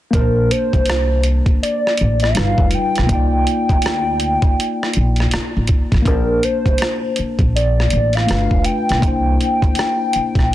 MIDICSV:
0, 0, Header, 1, 6, 480
1, 0, Start_track
1, 0, Key_signature, -2, "major"
1, 0, Tempo, 740741
1, 87, Time_signature, 4, 2, 24, 8
1, 6835, End_track
2, 0, Start_track
2, 0, Title_t, "Analog synth lead"
2, 0, Program_c, 0, 81
2, 94, Note_on_c, 0, 70, 89
2, 334, Note_on_c, 0, 72, 99
2, 344, Note_off_c, 0, 70, 0
2, 811, Note_off_c, 0, 72, 0
2, 1054, Note_on_c, 0, 74, 87
2, 1414, Note_off_c, 0, 74, 0
2, 1442, Note_on_c, 0, 77, 99
2, 1777, Note_on_c, 0, 79, 96
2, 1787, Note_off_c, 0, 77, 0
2, 2012, Note_off_c, 0, 79, 0
2, 2018, Note_on_c, 0, 79, 89
2, 3427, Note_off_c, 0, 79, 0
2, 3936, Note_on_c, 0, 70, 92
2, 4174, Note_on_c, 0, 72, 106
2, 4184, Note_off_c, 0, 70, 0
2, 4651, Note_off_c, 0, 72, 0
2, 4896, Note_on_c, 0, 74, 82
2, 5281, Note_on_c, 0, 77, 98
2, 5291, Note_off_c, 0, 74, 0
2, 5607, Note_on_c, 0, 79, 102
2, 5616, Note_off_c, 0, 77, 0
2, 5843, Note_off_c, 0, 79, 0
2, 5847, Note_on_c, 0, 79, 101
2, 6835, Note_off_c, 0, 79, 0
2, 6835, End_track
3, 0, Start_track
3, 0, Title_t, "Tine electric piano"
3, 0, Program_c, 1, 4
3, 69, Note_on_c, 1, 58, 59
3, 87, Note_on_c, 1, 62, 51
3, 105, Note_on_c, 1, 81, 49
3, 122, Note_on_c, 1, 72, 64
3, 191, Control_c, 1, 64, 127
3, 1492, Note_off_c, 1, 58, 0
3, 1501, Note_off_c, 1, 62, 0
3, 1510, Note_off_c, 1, 81, 0
3, 1518, Note_on_c, 1, 55, 59
3, 1519, Note_off_c, 1, 72, 0
3, 1528, Note_on_c, 1, 63, 50
3, 1536, Control_c, 1, 64, 0
3, 1537, Note_on_c, 1, 65, 53
3, 1547, Note_on_c, 1, 71, 60
3, 1645, Control_c, 1, 64, 127
3, 1987, Note_on_c, 1, 58, 58
3, 1999, Note_off_c, 1, 63, 0
3, 2003, Note_off_c, 1, 55, 0
3, 2006, Note_on_c, 1, 63, 47
3, 2012, Note_off_c, 1, 65, 0
3, 2015, Control_c, 1, 64, 0
3, 2017, Note_off_c, 1, 71, 0
3, 2024, Note_on_c, 1, 65, 49
3, 2041, Note_on_c, 1, 74, 58
3, 2141, Control_c, 1, 64, 127
3, 3891, Note_off_c, 1, 58, 0
3, 3901, Note_off_c, 1, 63, 0
3, 3901, Note_on_c, 1, 58, 61
3, 3910, Note_off_c, 1, 65, 0
3, 3918, Note_off_c, 1, 74, 0
3, 3919, Note_on_c, 1, 61, 45
3, 3937, Control_c, 1, 64, 0
3, 3937, Note_on_c, 1, 81, 54
3, 3957, Note_on_c, 1, 72, 64
3, 3962, Note_on_c, 1, 62, 52
3, 3975, Note_off_c, 1, 61, 0
3, 4040, Control_c, 1, 64, 127
3, 5328, Note_off_c, 1, 58, 0
3, 5346, Note_off_c, 1, 81, 0
3, 5356, Note_off_c, 1, 72, 0
3, 5356, Note_on_c, 1, 57, 55
3, 5359, Note_off_c, 1, 62, 0
3, 5365, Note_on_c, 1, 62, 52
3, 5375, Note_on_c, 1, 65, 51
3, 5377, Control_c, 1, 64, 0
3, 5383, Note_on_c, 1, 71, 67
3, 5496, Control_c, 1, 64, 127
3, 5827, Note_on_c, 1, 58, 58
3, 5839, Note_off_c, 1, 62, 0
3, 5842, Note_off_c, 1, 57, 0
3, 5846, Note_on_c, 1, 62, 51
3, 5851, Note_off_c, 1, 65, 0
3, 5855, Note_off_c, 1, 71, 0
3, 5855, Control_c, 1, 64, 0
3, 5863, Note_on_c, 1, 64, 50
3, 5882, Note_on_c, 1, 72, 62
3, 5980, Control_c, 1, 64, 127
3, 6835, Note_off_c, 1, 58, 0
3, 6835, Note_off_c, 1, 62, 0
3, 6835, Note_off_c, 1, 64, 0
3, 6835, Note_off_c, 1, 72, 0
3, 6835, End_track
4, 0, Start_track
4, 0, Title_t, "Upright bass"
4, 0, Program_c, 2, 32
4, 93, Note_on_c, 2, 34, 86
4, 300, Note_off_c, 2, 34, 0
4, 481, Note_on_c, 2, 36, 71
4, 898, Note_off_c, 2, 36, 0
4, 1302, Note_on_c, 2, 33, 75
4, 1505, Note_off_c, 2, 33, 0
4, 1540, Note_on_c, 2, 31, 84
4, 1665, Note_off_c, 2, 31, 0
4, 1678, Note_on_c, 2, 29, 72
4, 1757, Note_off_c, 2, 29, 0
4, 1934, Note_on_c, 2, 35, 67
4, 2006, Note_off_c, 2, 35, 0
4, 2010, Note_on_c, 2, 36, 74
4, 2219, Note_off_c, 2, 36, 0
4, 2398, Note_on_c, 2, 38, 79
4, 2817, Note_off_c, 2, 38, 0
4, 3218, Note_on_c, 2, 34, 79
4, 3423, Note_off_c, 2, 34, 0
4, 3606, Note_on_c, 2, 33, 73
4, 3682, Note_off_c, 2, 33, 0
4, 3842, Note_on_c, 2, 33, 77
4, 3930, Note_off_c, 2, 33, 0
4, 3930, Note_on_c, 2, 34, 97
4, 4139, Note_off_c, 2, 34, 0
4, 4319, Note_on_c, 2, 36, 76
4, 4398, Note_off_c, 2, 36, 0
4, 4794, Note_on_c, 2, 34, 80
4, 5084, Note_off_c, 2, 34, 0
4, 5138, Note_on_c, 2, 33, 78
4, 5343, Note_off_c, 2, 33, 0
4, 5379, Note_on_c, 2, 31, 84
4, 5504, Note_off_c, 2, 31, 0
4, 5521, Note_on_c, 2, 29, 71
4, 5599, Note_off_c, 2, 29, 0
4, 5768, Note_on_c, 2, 35, 69
4, 5843, Note_off_c, 2, 35, 0
4, 5852, Note_on_c, 2, 36, 84
4, 6060, Note_off_c, 2, 36, 0
4, 6243, Note_on_c, 2, 38, 70
4, 6320, Note_off_c, 2, 38, 0
4, 6714, Note_on_c, 2, 34, 71
4, 6835, Note_off_c, 2, 34, 0
4, 6835, End_track
5, 0, Start_track
5, 0, Title_t, "Muted upright bass strokes"
5, 3458, Note_on_c, 9, 29, 41
5, 3523, Note_off_c, 9, 29, 0
5, 4659, Note_on_c, 9, 29, 42
5, 4723, Note_off_c, 9, 29, 0
5, 6581, Note_on_c, 9, 29, 46
5, 6646, Note_off_c, 9, 29, 0
5, 6835, End_track
6, 0, Start_track
6, 0, Title_t, "Drums"
6, 86, Note_on_c, 9, 36, 100
6, 90, Note_on_c, 9, 42, 57
6, 151, Note_off_c, 9, 36, 0
6, 154, Note_off_c, 9, 42, 0
6, 331, Note_on_c, 9, 42, 56
6, 396, Note_off_c, 9, 42, 0
6, 474, Note_on_c, 9, 36, 76
6, 480, Note_on_c, 9, 42, 32
6, 539, Note_off_c, 9, 36, 0
6, 545, Note_off_c, 9, 42, 0
6, 554, Note_on_c, 9, 42, 68
6, 580, Note_on_c, 9, 37, 106
6, 619, Note_off_c, 9, 42, 0
6, 645, Note_off_c, 9, 37, 0
6, 800, Note_on_c, 9, 42, 57
6, 865, Note_off_c, 9, 42, 0
6, 946, Note_on_c, 9, 36, 72
6, 947, Note_on_c, 9, 42, 28
6, 1011, Note_off_c, 9, 36, 0
6, 1012, Note_off_c, 9, 42, 0
6, 1059, Note_on_c, 9, 42, 77
6, 1124, Note_off_c, 9, 42, 0
6, 1212, Note_on_c, 9, 37, 35
6, 1277, Note_off_c, 9, 37, 0
6, 1280, Note_on_c, 9, 42, 58
6, 1345, Note_off_c, 9, 42, 0
6, 1424, Note_on_c, 9, 42, 28
6, 1451, Note_on_c, 9, 37, 30
6, 1489, Note_off_c, 9, 42, 0
6, 1515, Note_off_c, 9, 37, 0
6, 1522, Note_on_c, 9, 42, 64
6, 1537, Note_on_c, 9, 37, 109
6, 1587, Note_off_c, 9, 42, 0
6, 1601, Note_off_c, 9, 37, 0
6, 1671, Note_on_c, 9, 36, 66
6, 1736, Note_off_c, 9, 36, 0
6, 1754, Note_on_c, 9, 42, 59
6, 1819, Note_off_c, 9, 42, 0
6, 1915, Note_on_c, 9, 42, 34
6, 1930, Note_on_c, 9, 37, 31
6, 1980, Note_off_c, 9, 42, 0
6, 1995, Note_off_c, 9, 37, 0
6, 2003, Note_on_c, 9, 36, 109
6, 2004, Note_on_c, 9, 42, 67
6, 2068, Note_off_c, 9, 36, 0
6, 2069, Note_off_c, 9, 42, 0
6, 2247, Note_on_c, 9, 42, 57
6, 2312, Note_off_c, 9, 42, 0
6, 2393, Note_on_c, 9, 36, 68
6, 2399, Note_on_c, 9, 42, 29
6, 2458, Note_off_c, 9, 36, 0
6, 2464, Note_off_c, 9, 42, 0
6, 2475, Note_on_c, 9, 42, 71
6, 2501, Note_on_c, 9, 37, 108
6, 2540, Note_off_c, 9, 42, 0
6, 2566, Note_off_c, 9, 37, 0
6, 2720, Note_on_c, 9, 42, 56
6, 2784, Note_off_c, 9, 42, 0
6, 2865, Note_on_c, 9, 42, 27
6, 2866, Note_on_c, 9, 36, 75
6, 2930, Note_off_c, 9, 36, 0
6, 2930, Note_off_c, 9, 42, 0
6, 2980, Note_on_c, 9, 42, 76
6, 3045, Note_off_c, 9, 42, 0
6, 3130, Note_on_c, 9, 37, 31
6, 3195, Note_off_c, 9, 37, 0
6, 3198, Note_on_c, 9, 42, 59
6, 3263, Note_off_c, 9, 42, 0
6, 3345, Note_on_c, 9, 42, 30
6, 3371, Note_on_c, 9, 37, 30
6, 3409, Note_off_c, 9, 42, 0
6, 3436, Note_off_c, 9, 37, 0
6, 3443, Note_on_c, 9, 42, 75
6, 3458, Note_on_c, 9, 37, 123
6, 3508, Note_off_c, 9, 42, 0
6, 3522, Note_off_c, 9, 37, 0
6, 3677, Note_on_c, 9, 42, 59
6, 3687, Note_on_c, 9, 36, 78
6, 3742, Note_off_c, 9, 42, 0
6, 3752, Note_off_c, 9, 36, 0
6, 3835, Note_on_c, 9, 36, 84
6, 3836, Note_on_c, 9, 42, 31
6, 3851, Note_on_c, 9, 37, 31
6, 3900, Note_off_c, 9, 36, 0
6, 3901, Note_off_c, 9, 42, 0
6, 3916, Note_off_c, 9, 37, 0
6, 3924, Note_on_c, 9, 36, 112
6, 3926, Note_on_c, 9, 42, 69
6, 3988, Note_off_c, 9, 36, 0
6, 3991, Note_off_c, 9, 42, 0
6, 4167, Note_on_c, 9, 42, 59
6, 4232, Note_off_c, 9, 42, 0
6, 4313, Note_on_c, 9, 36, 78
6, 4319, Note_on_c, 9, 42, 33
6, 4378, Note_off_c, 9, 36, 0
6, 4383, Note_off_c, 9, 42, 0
6, 4394, Note_on_c, 9, 42, 75
6, 4420, Note_on_c, 9, 37, 104
6, 4459, Note_off_c, 9, 42, 0
6, 4485, Note_off_c, 9, 37, 0
6, 4640, Note_on_c, 9, 42, 54
6, 4704, Note_off_c, 9, 42, 0
6, 4787, Note_on_c, 9, 36, 69
6, 4789, Note_on_c, 9, 42, 28
6, 4852, Note_off_c, 9, 36, 0
6, 4854, Note_off_c, 9, 42, 0
6, 4902, Note_on_c, 9, 42, 76
6, 4967, Note_off_c, 9, 42, 0
6, 5054, Note_on_c, 9, 37, 35
6, 5119, Note_off_c, 9, 37, 0
6, 5122, Note_on_c, 9, 42, 60
6, 5187, Note_off_c, 9, 42, 0
6, 5268, Note_on_c, 9, 42, 29
6, 5295, Note_on_c, 9, 37, 29
6, 5333, Note_off_c, 9, 42, 0
6, 5360, Note_off_c, 9, 37, 0
6, 5369, Note_on_c, 9, 42, 66
6, 5383, Note_on_c, 9, 37, 119
6, 5433, Note_off_c, 9, 42, 0
6, 5448, Note_off_c, 9, 37, 0
6, 5514, Note_on_c, 9, 36, 76
6, 5579, Note_off_c, 9, 36, 0
6, 5602, Note_on_c, 9, 42, 61
6, 5667, Note_off_c, 9, 42, 0
6, 5763, Note_on_c, 9, 42, 31
6, 5778, Note_on_c, 9, 37, 29
6, 5828, Note_off_c, 9, 42, 0
6, 5843, Note_off_c, 9, 37, 0
6, 5847, Note_on_c, 9, 36, 95
6, 5852, Note_on_c, 9, 42, 65
6, 5912, Note_off_c, 9, 36, 0
6, 5917, Note_off_c, 9, 42, 0
6, 6095, Note_on_c, 9, 42, 60
6, 6160, Note_off_c, 9, 42, 0
6, 6236, Note_on_c, 9, 36, 75
6, 6244, Note_on_c, 9, 42, 27
6, 6300, Note_off_c, 9, 36, 0
6, 6308, Note_off_c, 9, 42, 0
6, 6319, Note_on_c, 9, 42, 72
6, 6345, Note_on_c, 9, 37, 102
6, 6384, Note_off_c, 9, 42, 0
6, 6410, Note_off_c, 9, 37, 0
6, 6566, Note_on_c, 9, 42, 59
6, 6631, Note_off_c, 9, 42, 0
6, 6709, Note_on_c, 9, 36, 73
6, 6712, Note_on_c, 9, 42, 27
6, 6733, Note_on_c, 9, 37, 31
6, 6773, Note_off_c, 9, 36, 0
6, 6776, Note_off_c, 9, 42, 0
6, 6797, Note_off_c, 9, 37, 0
6, 6835, End_track
0, 0, End_of_file